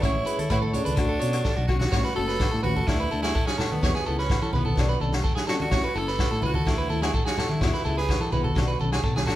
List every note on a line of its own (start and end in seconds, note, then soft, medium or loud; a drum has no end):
0.00 0.22 A1 loud
0.00 0.16 E3 medium
0.00 0.17 G#3 medium
0.00 0.17 C#4 medium
0.00 0.50 E4 loud
0.00 0.18 G#4 medium
0.00 0.25 C#5 medium
0.00 0.51 C#5 medium
0.00 kick medium
0.00 cross-stick medium
0.00 closed hi-hat medium
0.00 shekere loud
0.05 low agogo medium
0.14 shekere soft
0.25 0.42 C#4 medium
0.25 0.41 G#4 medium
0.25 0.38 B4 medium
0.25 closed hi-hat medium
0.25 shekere medium
0.29 0.42 G#3 soft
0.38 0.50 A4 medium
0.38 closed hi-hat medium
0.38 high conga medium
0.38 shekere soft
0.50 0.79 A2 loud
0.50 0.58 E4 medium
0.50 0.62 B4 medium
0.50 0.59 C#5 medium
0.50 kick medium
0.50 cross-stick medium
0.50 closed hi-hat medium
0.50 low agogo medium
0.50 shekere loud
0.62 0.73 A4 medium
0.62 high conga medium
0.67 0.74 E4 medium
0.67 0.77 C#5 medium
0.73 0.90 G#3 soft
0.73 0.90 C#4 medium
0.73 1.67 D4 loud
0.73 0.88 G#4 medium
0.73 1.70 A4 medium
0.73 0.85 C#5 medium
0.73 closed hi-hat medium
0.73 low conga medium
0.73 shekere medium
0.85 0.96 C#2 medium
0.85 0.96 B4 medium
0.85 closed hi-hat medium
0.85 high conga medium
0.85 shekere soft
0.96 1.17 D2 loud
0.96 1.12 A3 medium
0.96 1.13 C#4 medium
0.96 muted clean electric guitar stroke medium
0.96 kick medium
0.96 cross-stick medium
0.96 closed hi-hat medium
0.96 high conga medium
0.96 low agogo medium
0.96 shekere loud
1.00 1.14 F#4 medium
1.08 1.21 A4 medium
1.08 shekere soft
1.19 1.40 B2 medium
1.19 1.36 F#4 medium
1.19 1.43 C#5 medium
1.19 closed hi-hat medium
1.19 shekere medium
1.24 1.37 C#4 soft
1.33 cross-stick medium
1.33 closed hi-hat medium
1.33 low agogo medium
1.44 1.56 A4 medium
1.44 kick medium
1.44 snare medium
1.44 shekere medium
1.57 1.85 B1 loud
1.57 1.68 F#4 medium
1.57 shekere soft
1.67 1.79 F#4 medium
1.67 1.83 F#4 medium
1.67 kick medium
1.67 low conga medium
1.67 low agogo medium
1.67 shekere medium
1.72 1.85 C#4 medium
1.79 2.13 F#4 loud
1.79 snare medium
1.79 high conga medium
1.79 shekere soft
1.92 2.02 A1 loud
1.92 2.07 E3 medium
1.92 2.08 A3 medium
1.92 2.08 C#4 medium
1.92 2.09 F#4 medium
1.92 2.04 C#5 loud
1.92 kick loud
1.92 snare medium
1.92 low agogo medium
1.92 shekere medium
2.04 2.15 B4 medium
2.04 snare soft
2.15 2.45 F#1 medium
2.15 2.31 C#4 medium
2.15 2.30 F#4 medium
2.15 2.28 A4 medium
2.15 2.60 A4 loud
2.19 2.32 A3 medium
2.28 2.51 B4 medium
2.28 snare soft
2.28 shekere soft
2.39 kick loud
2.39 snare medium
2.39 low agogo medium
2.39 shekere loud
2.52 2.62 A2 medium
2.52 2.63 A4 medium
2.63 2.83 A1 loud
2.63 2.79 C#4 soft
2.63 2.89 F#4 loud
2.63 2.78 F#4 medium
2.63 2.75 B4 medium
2.63 high conga medium
2.63 low conga medium
2.63 shekere medium
2.68 2.80 A3 soft
2.76 2.99 A4 medium
2.76 high conga medium
2.76 low conga medium
2.76 shekere soft
2.87 3.06 D2 loud
2.87 3.02 E3 medium
2.87 3.03 A3 medium
2.87 3.03 D4 medium
2.87 3.22 E4 loud
2.87 3.03 A4 medium
2.87 kick medium
2.87 snare medium
2.87 low agogo medium
2.87 shekere loud
3.00 3.11 B4 medium
3.11 3.31 D2 medium
3.11 3.27 A3 soft
3.11 3.26 D4 medium
3.11 3.26 A4 medium
3.11 3.23 A4 medium
3.11 shekere medium
3.22 3.48 E4 loud
3.22 3.34 G#4 medium
3.22 snare medium
3.22 low agogo medium
3.35 3.46 A4 medium
3.35 kick loud
3.35 shekere loud
3.46 3.73 C#4 medium
3.46 3.58 G#4 medium
3.46 snare medium
3.58 3.75 A3 soft
3.58 3.74 D4 medium
3.58 3.81 A4 medium
3.58 3.73 A4 medium
3.58 snare medium
3.58 low conga medium
3.58 low agogo medium
3.58 shekere medium
3.71 4.18 B3 loud
3.71 high conga medium
3.71 shekere soft
3.81 3.92 E2 loud
3.81 3.96 F#3 medium
3.81 3.97 B3 medium
3.81 3.97 E4 medium
3.81 3.97 G#4 medium
3.81 3.94 C#5 medium
3.81 kick loud
3.81 snare medium
3.81 low agogo medium
3.81 shekere loud
3.95 4.06 G#4 medium
3.95 snare soft
4.04 4.35 C#2 medium
4.04 4.21 B3 soft
4.04 4.21 E4 medium
4.04 4.20 G#4 medium
4.04 4.18 A4 medium
4.04 shekere medium
4.18 4.51 C#4 medium
4.18 4.41 B4 medium
4.18 snare soft
4.18 shekere soft
4.29 kick loud
4.29 snare medium
4.29 low agogo medium
4.29 shekere loud
4.42 4.51 E3 medium
4.42 4.53 A4 medium
4.52 4.72 B1 medium
4.52 4.98 B3 medium
4.52 4.69 B3 soft
4.52 4.68 E4 medium
4.52 4.67 G#4 medium
4.52 4.65 B4 medium
4.52 high conga medium
4.52 low conga medium
4.52 shekere medium
4.65 4.88 A4 medium
4.65 high conga medium
4.65 low conga medium
4.65 shekere soft
4.76 4.96 B1 loud
4.76 4.91 F#3 medium
4.76 4.91 C#4 medium
4.76 4.92 D4 medium
4.76 kick medium
4.76 snare medium
4.76 low agogo medium
4.76 shekere loud
4.89 5.00 B4 medium
4.89 shekere soft
4.99 5.20 B1 medium
4.99 5.16 C#4 soft
4.99 5.14 D4 medium
4.99 5.12 A4 medium
4.99 high conga medium
4.99 shekere medium
5.12 snare medium
5.12 low agogo medium
5.24 5.35 A4 medium
5.24 kick loud
5.24 shekere loud
5.35 5.47 G#4 medium
5.35 snare medium
5.35 shekere soft
5.47 5.62 D4 medium
5.47 5.54 F#4 loud
5.47 5.70 A4 medium
5.47 snare medium
5.47 low agogo medium
5.47 shekere medium
5.52 5.64 C#4 medium
5.60 5.99 F#4 loud
5.60 high conga medium
5.60 shekere soft
5.71 5.81 A1 loud
5.71 5.86 F#3 medium
5.71 5.86 C#4 medium
5.71 5.87 E4 medium
5.71 5.83 C#5 medium
5.71 kick medium
5.71 snare medium
5.71 low agogo medium
5.71 shekere loud
5.84 5.95 B4 medium
5.95 6.23 F#1 loud
5.95 6.11 C#4 soft
5.95 6.09 E4 medium
5.95 6.07 A4 medium
5.95 6.44 A4 loud
5.95 shekere medium
6.07 6.30 B4 medium
6.07 snare soft
6.07 shekere soft
6.19 kick medium
6.19 snare medium
6.19 low agogo medium
6.19 shekere medium
6.31 6.40 A2 medium
6.31 6.42 A4 medium
6.41 6.62 C#2 medium
6.41 6.58 C#4 medium
6.41 6.56 E4 medium
6.41 6.54 B4 medium
6.41 high conga medium
6.41 low conga medium
6.41 shekere medium
6.45 6.69 F#4 loud
6.54 6.77 A4 medium
6.54 high conga medium
6.54 low conga medium
6.54 shekere soft
6.65 6.85 D2 loud
6.65 6.80 A3 medium
6.65 6.81 E4 medium
6.65 7.03 E4 loud
6.65 6.81 A4 medium
6.65 kick medium
6.65 snare medium
6.65 low agogo medium
6.65 shekere loud
6.78 6.89 B4 medium
6.78 shekere soft
6.89 7.09 D2 medium
6.89 7.06 E4 soft
6.89 7.04 A4 medium
6.89 7.01 A4 medium
6.89 high conga medium
6.89 shekere medium
7.02 7.14 E4 medium
7.02 7.13 G#4 medium
7.02 snare medium
7.02 low agogo medium
7.14 7.25 A4 medium
7.14 kick loud
7.14 shekere loud
7.26 7.51 F#4 medium
7.26 7.37 G#4 medium
7.26 snare medium
7.26 shekere soft
7.37 7.54 E4 soft
7.37 7.52 A4 medium
7.37 7.61 A4 medium
7.37 snare medium
7.37 low conga medium
7.37 low agogo medium
7.37 shekere medium
7.49 7.97 E4 loud
7.49 high conga medium
7.49 shekere soft
7.61 7.70 E2 loud
7.61 7.75 F#3 medium
7.61 7.76 B3 medium
7.61 7.76 E4 medium
7.61 7.76 G#4 medium
7.61 muted clean electric guitar stroke loud
7.61 kick loud
7.61 snare medium
7.61 low agogo medium
7.61 shekere medium
7.73 7.85 B4 medium
7.73 snare soft
7.83 8.13 C#2 medium
7.83 8.00 B3 medium
7.83 7.99 E4 medium
7.83 7.98 G#4 medium
7.83 7.96 A4 medium
7.83 shekere medium
7.97 8.24 G#4 loud
7.97 8.20 B4 medium
7.97 snare soft
8.08 kick medium
8.08 snare medium
8.08 low agogo medium
8.08 shekere medium
8.20 8.29 E3 loud
8.20 8.32 A4 medium
8.20 shekere soft
8.24 8.34 G#4 medium
8.30 8.50 B1 medium
8.30 8.47 B3 soft
8.30 8.47 E4 medium
8.30 8.80 F#4 medium
8.30 8.46 G#4 medium
8.30 8.44 B4 medium
8.30 high conga medium
8.30 low conga medium
8.30 shekere medium
8.44 8.67 A4 medium
8.44 high conga medium
8.44 low conga medium
8.55 8.75 B1 loud
8.55 8.70 F#3 medium
8.55 8.70 C#4 medium
8.55 8.71 D4 medium
8.55 kick medium
8.55 snare medium
8.55 low agogo medium
8.55 shekere loud
8.68 8.79 B4 medium
8.68 shekere soft
8.79 8.99 B1 medium
8.79 8.95 C#4 soft
8.79 8.94 D4 medium
8.79 8.92 A4 medium
8.79 high conga medium
8.79 shekere medium
8.92 9.03 G#4 medium
8.92 snare medium
8.92 low agogo medium
9.04 9.25 B1 medium
9.04 9.15 A4 medium
9.04 kick loud
9.04 shekere loud
9.16 9.26 G#4 medium
9.16 snare medium
9.16 high conga medium
9.16 shekere soft
9.26 9.36 A1 medium
9.26 9.36 C#4 soft
9.26 9.36 D4 medium
9.26 9.36 F#4 loud
9.26 9.36 A4 medium
9.26 snare medium
9.26 low conga medium
9.26 low agogo medium
9.26 shekere medium